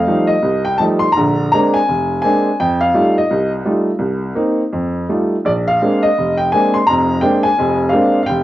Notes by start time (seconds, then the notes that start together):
Already playing: F5
0.07 F3 G3 A3 D#4
0.27 D#5
0.43 C2
0.65 G5
0.78 F3 G3 A3 D#4 A5
0.99 C6
1.12 A#5
1.16 A#1 D3
1.52 G#3 A#3 C4 D4 A#5
1.74 G#5
1.88 F1
2.22 G#3 A#3 C4 D4 G#5
2.60 F2 G5
2.81 F5
2.94 G3 A3 D#4 F4
3.18 D#5
3.31 C2
3.65 G3 A3 D#4 F4
3.99 C2
4.35 A#3 C4 D#4
4.73 F2
5.09 G3 A3 D#4 F4
5.45 A#1 D5
5.68 F5
5.82 G#3 A#3 C4 D4
6.03 D#5
6.18 F1
6.37 G5
6.52 G#3 A#3 C4 D4 G#5
6.74 C6
6.87 F1 F2 A#5
7.21 G#3 A#3 C4 D4 G5
7.43 G#5
7.59 F1 F2
7.89 G#3 A#3 C4 D4 F5
8.23 F5 G5
8.29 F1